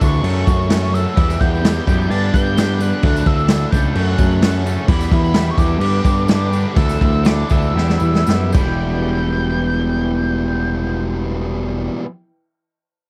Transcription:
Already playing: A4 D5 E5 D6
0.00 D2 D3 E3 A3 D4 E4 A4 C#6, kick, tambourine, crash
0.22 F#2 C#3 F#3 A3 C#4 F#4 A4 C#5 F#5 C#6, crash
0.26 tambourine
0.47 F#2, kick, tambourine, crash
0.62 tambourine
0.69 F#2 C#3 F#3 A3 C#4 F#4 A4, snare, tambourine, crash
0.85 tambourine
0.91 F#2 C#3 F#3 A3 C#4 F#4 A4 E6, tambourine, crash
1.08 tambourine
1.14 E2 B2 E3 G3 B3 E4 G4 B4 E5 G5 E6, kick, crash
1.29 snare, tambourine
1.40 E2 G6, kick, crash
1.55 tambourine
1.61 E2 B2 E3 G3 B3 E4 G4, snare, crash
1.66 tambourine
1.86 E2 F#2 B2 E3 G3 B3 E4 G4, kick, tambourine, crash
2.01 tambourine
2.08 G2 D3 G3 B3 D4 G4 D5 D6 A6, crash
2.34 G2 G6, kick, tambourine, crash
2.47 tambourine
2.56 G2 D3 G3 B3 D4 G4, snare, tambourine, crash
2.78 G2 D3 G3 B3 D4 G4 F#6, tambourine, crash
3.00 D2 D3 A3 D4 A4 D5 E5, kick, crash
3.04 E3 E4 A4
3.16 snare, tambourine
3.26 D2 E6, kick, crash
3.39 tambourine
3.48 D3 E3 A3 D4 E4 A4, snare, tambourine, crash
3.71 C#2 D3 E3 A3 D4 E4 G6, kick, tambourine, crash
3.75 A4
3.85 tambourine
3.94 F#2 C#3 F#3 A3 C#4 F#4 A4 C#5 F#5 C#6 F#6, crash
4.18 F#2, kick, tambourine, crash
4.31 tambourine
4.41 F#2 C#3 F#3 A3 C#4 F#4 A4, snare, tambourine, crash
4.64 F#2 C#3 F#3 A3 C#4 F#4 A4, tambourine, crash
4.86 E2 B2 E3 G3 B3 E4 G4 B4 E5 G5 B5 E6, kick, crash
5.01 snare, tambourine
5.11 E2, kick, crash
5.24 B5, tambourine
5.33 E2 B2 E3 G3 B3 E4 G4, snare, tambourine, crash
5.51 C#6
5.56 E2 B2 E3 G3 B3 E4 G4 D6, kick, tambourine, crash
5.78 G2 D3 G3 B3 D4 G4, crash
5.83 D5 D6
6.05 G2, kick, tambourine, crash
6.18 tambourine
6.26 G2 D3 G3 B3 D4 G4, snare, tambourine, crash
6.49 G2 D3 G3 B3 D4 G4, tambourine
6.53 crash
6.74 D2 D3 E3 A3 D4 E4 A4 E5 E6, kick, tambourine, crash
6.89 snare, tambourine
7.01 D2, kick, crash
7.13 tambourine
7.23 D3 E3 A3 D4 E4 A4 D6, snare, tambourine, crash
7.49 D2 D3 E3 A3 D4 E4 A4 E6, kick, tambourine, crash
7.62 tambourine
7.73 E2 B2 E3 G3 B3 E4 G4 B4 E5 B5
7.78 snare
7.88 snare, tambourine
8.00 E2, tambourine
8.14 snare, tambourine
8.26 E2 F#2 B2 E3 G3 B3 E4 G4, snare, tambourine
8.52 E1 E2 B2 E3 G3 B3 E4 B4 G5 G6, kick, crash, tambourine
8.57 G4

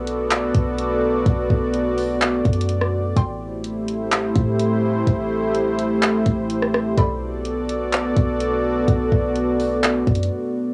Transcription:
Already playing: B1 B3 F#4 A4 D5
0.07 closed hi-hat
0.31 clap, closed hi-hat
0.55 B1, kick, closed hi-hat
0.79 closed hi-hat
1.26 B1, kick, closed hi-hat
1.50 B1, kick
1.74 closed hi-hat
1.98 open hi-hat
2.21 clap, closed hi-hat
2.45 F#2, kick, closed hi-hat
2.53 closed hi-hat
2.61 closed hi-hat
2.69 closed hi-hat
2.81 cross-stick
3.16 A1 A3 E4 G4 C5 G5 C6, kick, closed hi-hat
3.64 closed hi-hat
3.88 closed hi-hat
4.12 clap, closed hi-hat
4.36 A2, kick, closed hi-hat
4.59 closed hi-hat
5.07 A1, kick, closed hi-hat
5.55 closed hi-hat
5.79 closed hi-hat
6.02 clap, closed hi-hat
6.26 A1, kick, closed hi-hat
6.50 closed hi-hat
6.62 cross-stick
6.74 cross-stick
6.97 B1 B3 F#4 A4 D5 B5, kick, closed hi-hat
7.45 closed hi-hat
7.69 closed hi-hat
7.93 clap, closed hi-hat
8.17 B1, kick, closed hi-hat
8.40 closed hi-hat
8.88 B1, kick, closed hi-hat
9.12 B1, kick
9.36 closed hi-hat
9.60 open hi-hat
9.83 clap, closed hi-hat
10.07 F#2, kick, closed hi-hat
10.15 closed hi-hat
10.23 closed hi-hat

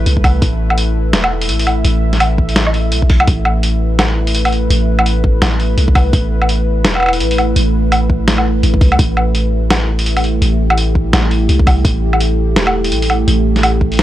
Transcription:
Already playing: A3 E4 B4
0.06 C2, closed hi-hat
0.17 kick
0.24 kick, open hi-hat, low woodblock
0.42 A1 E5, kick, closed hi-hat
0.70 low woodblock
0.78 closed hi-hat
1.13 E1, snare, closed hi-hat
1.24 low woodblock
1.42 open hi-hat
1.49 A1, closed hi-hat
1.59 open hi-hat
1.67 closed hi-hat, low woodblock
1.85 A1, closed hi-hat
2.13 snare, closed hi-hat
2.20 closed hi-hat, low woodblock
2.38 kick
2.49 open hi-hat
2.56 snare, closed hi-hat
2.67 low woodblock
2.74 open hi-hat
2.92 B1, closed hi-hat
3.02 kick
3.10 kick, open hi-hat
3.20 low woodblock
3.27 A1 A3 E4 B4, kick, closed hi-hat
3.45 low woodblock
3.63 closed hi-hat
3.99 snare, closed hi-hat, low woodblock
4.27 open hi-hat
4.35 closed hi-hat
4.45 open hi-hat, low woodblock
4.52 closed hi-hat
4.70 A1, closed hi-hat
4.99 low woodblock
5.06 closed hi-hat
5.24 kick
5.42 A1, snare, closed hi-hat, low woodblock
5.60 open hi-hat
5.77 C2, closed hi-hat
5.88 kick
5.95 kick, open hi-hat, low woodblock
6.13 A1, kick, closed hi-hat
6.42 low woodblock
6.49 closed hi-hat
6.85 E1, snare, closed hi-hat
6.95 low woodblock
7.00 low woodblock
7.03 low woodblock
7.06 low woodblock
7.09 low woodblock
7.13 open hi-hat
7.20 A1, closed hi-hat
7.31 open hi-hat
7.38 closed hi-hat, low woodblock
7.56 A1, closed hi-hat
7.92 closed hi-hat, low woodblock
8.10 kick
8.28 snare, closed hi-hat
8.38 low woodblock
8.63 A1, closed hi-hat
8.74 kick
8.81 C2, kick, open hi-hat
8.92 low woodblock
8.99 A1 G4, kick, closed hi-hat
9.17 low woodblock
9.35 closed hi-hat
9.71 snare, closed hi-hat, low woodblock
9.99 open hi-hat
10.06 closed hi-hat
10.17 open hi-hat, low woodblock
10.24 closed hi-hat
10.42 A1, closed hi-hat
10.70 low woodblock
10.78 closed hi-hat
10.95 kick
11.13 A1, snare, closed hi-hat, low woodblock
11.31 open hi-hat
11.49 C2, closed hi-hat
11.59 kick
11.67 kick, open hi-hat, low woodblock
11.85 A1, kick, closed hi-hat
12.13 low woodblock
12.20 closed hi-hat
12.56 E1, snare, closed hi-hat
12.67 low woodblock
12.84 open hi-hat
12.92 A1, closed hi-hat
13.02 open hi-hat
13.10 closed hi-hat, low woodblock
13.28 A1, closed hi-hat
13.56 snare, closed hi-hat
13.63 closed hi-hat, low woodblock
13.81 kick
13.92 open hi-hat
13.94 open hi-hat
13.95 open hi-hat
13.97 snare, closed hi-hat, open hi-hat
13.99 open hi-hat

